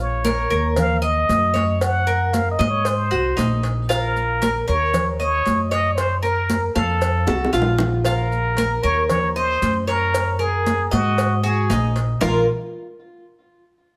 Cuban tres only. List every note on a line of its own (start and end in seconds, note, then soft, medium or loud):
0.00 0.24 F4 medium
0.24 0.49 A#4 medium
0.50 1.01 A#4 medium
1.02 1.53 D#5 medium
1.54 2.05 C#5 medium
2.07 2.58 A#4 medium
2.59 3.10 D#5 medium
3.11 3.36 F#4 medium
3.37 3.88 D#4 medium
3.89 4.40 F4 medium
4.42 4.66 A#4 medium
4.68 5.18 A#4 medium
5.20 5.70 D#5 medium
5.71 6.22 C#5 medium
6.23 6.74 A#4 medium
6.76 7.26 F5 medium
7.27 7.53 A4 medium
7.53 8.04 F4 medium
8.05 8.56 F4 medium
8.58 8.82 A#4 medium
8.83 9.34 A#4 medium
9.36 9.87 D#5 medium
9.87 10.38 C#5 medium
10.39 10.90 A#4 medium
10.91 11.42 D#5 medium
11.43 11.69 F#4 medium
11.70 12.20 D#4 medium
12.21 12.46 A#3 medium
12.21 12.46 F4 medium
12.21 12.46 A#4 medium